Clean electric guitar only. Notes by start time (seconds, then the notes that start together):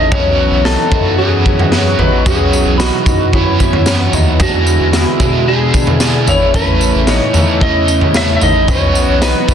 Already playing: D#4
0.11 C#4
0.66 D#4
0.92 D#4
1.18 C#4
1.46 C#4
1.72 C#4
1.99 D#4
2.26 C#4
2.79 D#4
3.06 D#4
3.33 C#4
3.59 C#4
3.86 C#4
4.13 D#4
4.40 D4
4.94 E4
5.20 E4
5.48 D4
5.74 D4
6.01 D4
6.27 E4
6.54 C#4
7.08 D#4
7.35 D#4
7.61 C#4
7.88 C#4
8.15 C#4
8.41 D#4
8.68 C#4
9.21 D#4
9.49 D#4